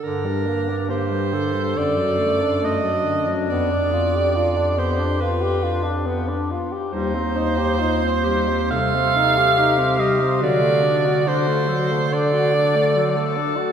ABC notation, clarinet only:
X:1
M:4/4
L:1/8
Q:1/4=70
K:Dphr
V:1 name="Clarinet"
D2 G A3 D2- | D2 F G F D2 z | E2 F G A2 G2 | ^F2 F A3 A2 |]